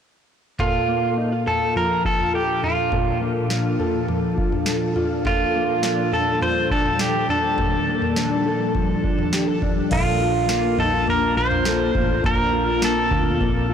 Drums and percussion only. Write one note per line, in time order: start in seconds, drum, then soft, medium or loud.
0.59 kick medium
0.59 floor tom medium
1.47 floor tom soft
1.76 floor tom medium
2.05 kick medium
2.20 floor tom medium
2.63 floor tom medium
2.92 kick medium
2.92 floor tom medium
3.50 snare medium
3.80 floor tom medium
4.08 floor tom medium
4.38 kick medium
4.52 floor tom medium
4.66 snare loud
4.96 floor tom medium
5.25 kick medium
5.25 floor tom medium
5.83 snare loud
6.13 floor tom soft
6.41 floor tom medium
6.71 kick medium
6.86 floor tom medium
6.99 snare loud
7.29 floor tom medium
7.58 kick medium
7.58 floor tom medium
8.02 floor tom medium
8.16 snare loud
8.75 kick medium
8.75 floor tom medium
9.04 kick medium
9.18 floor tom medium
9.33 snare loud
9.62 kick medium
9.62 floor tom medium
9.91 kick medium
9.91 floor tom medium
9.91 crash medium
10.49 snare loud
10.79 floor tom medium
11.07 floor tom medium
11.51 floor tom medium
11.65 snare loud
11.95 kick medium
11.95 floor tom medium
12.24 kick medium
12.24 floor tom medium
12.82 snare loud
13.11 kick medium
13.11 floor tom medium
13.41 kick medium
13.41 floor tom medium